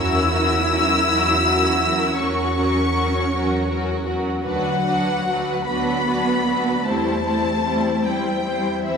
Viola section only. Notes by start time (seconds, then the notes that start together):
Already playing: F#3 C#4
0.32 F#3 C#4
0.71 F#3 C#4
1.10 F#3 C#4
1.47 F#3 C#4
1.84 F#3 C#4
2.21 F#3 C#4
2.57 F#3 C#4
2.94 F#3 C#4
3.32 F#3 C#4
3.71 F#3 C#4
4.09 F#3 C#4
4.46 F#3 D4
4.86 F#3 D4
5.28 F#3 D4
5.71 F#3 D4
6.08 F#3 D4
6.48 F#3 D4
6.87 G3 C4
7.26 G3 C4
7.64 G3 C4
8.02 G3 C4
8.44 G3 C4
8.83 G3 C4